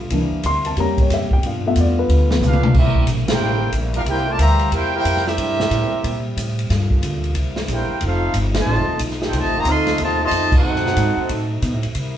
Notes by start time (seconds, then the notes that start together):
Already playing: B1 G3
0.10 C2 C3 E3 A#3 D4 E4, kick, ride
0.31 muted upright bass stroke
0.43 D2 C6, kick, hi-hat pedal, ride
0.65 A5, ride
0.76 E2 C#3 G3 A#3 C#4 G4 A#5, kick, ride
0.98 C#5, kick, ride
1.10 F2 E5, kick, snare, hi-hat pedal, ride
1.31 G5, kick
1.43 G2 G3 B3 D4 F4 F5, kick, ride
1.66 A3 B3 F4 E5
1.76 E2, kick, hi-hat pedal, ride
1.80 D5
1.99 B4
2.09 D2, kick, ride
2.31 F3 A3 B3, snare
2.40 C#2 B3 F4 G4, hi-hat pedal, mid tom
2.44 D4 B4 F5
2.53 high tom
2.63 mid tom
2.74 C2 C3 G3 A#3 E4, kick, crash
2.78 C4 G4 A#4 E5
2.95 muted upright bass stroke, kick
3.07 A#1, hi-hat pedal, ride
3.28 A#3 E4 G4 A#4 C5 G5, snare, ride
3.40 A1
3.72 A#1, kick, hi-hat pedal, ride
3.94 D4 F4 G4 A#4 F5, ride
4.06 C2 A#3 E4 G4 A#4 C5 G5, kick, ride
4.28 A3 F4 A#4 D5 A5
4.39 D2 E3 G3 A#3 G4 C5 E5 A#5, kick, hi-hat pedal, ride
4.59 ride
4.72 E2 A#3 C4 E4 G4 A#4 C5 G5, kick, ride
4.94 A#3 E4 G4 A#4 C5 G5
5.05 F2, kick, hi-hat pedal, ride
5.17 snare
5.26 G3 A#3 C4 E4 G4 A#4 E5, snare
5.38 G2, kick, ride
5.60 snare
5.71 A2, kick, hi-hat pedal, ride
5.91 muted upright bass stroke
6.04 A#2, kick, ride
6.37 A2, kick, hi-hat pedal, ride
6.59 ride
6.70 G2 D3 A#3 F4, kick, snare, ride
6.90 kick
7.02 D2, hi-hat pedal, ride
7.24 ride
7.35 C2 C4 E4, kick, ride
7.56 snare
7.68 A#1 A#3 E4 G4, kick, hi-hat pedal, ride
7.73 E4 A#4 C5 G5
7.89 muted upright bass stroke
8.00 F1 F3 A3 D#4, kick, ride
8.05 A3 C4 D#4 F4 A4 C5 F5
8.34 G1, kick, hi-hat pedal, ride
8.54 C3 D#3 A3, snare, ride
8.60 F4 C5 D#5 A5
8.66 A1
8.77 F1
8.88 D#1
8.99 B1, kick, hi-hat pedal, ride
9.11 snare
9.22 G4 A4, snare
9.26 D#4 C5 G5
9.33 C2 C3 D#3 F4 C5, kick, ride
9.37 A3 D#5 A5
9.42 A1
9.54 F1 A#3 G4
9.58 C5 D#5 A#5
9.65 D2 A3 C4 D#4 D#5 F5, kick, hi-hat pedal, ride
9.69 A4 C6
9.87 snare, ride
9.98 D#2 C3 D#3 A3 F4 C5 D#5 A5, kick, ride
10.23 C3 D#3 A3 F4 C5 D#5 A5
10.31 F2, kick, hi-hat pedal, ride
10.52 C4 D#4 F#4 F#5, kick, crash
10.56 D#4 A4 C5
10.64 F#2 F#3
10.76 snare
10.86 snare
10.96 G#2, kick, hi-hat pedal, ride
11.17 muted upright bass stroke
11.29 A2, kick, ride
11.62 B2, kick, hi-hat pedal, ride
11.73 A2
11.83 F#2, ride
11.95 C3 G3 E4 A#4, kick, ride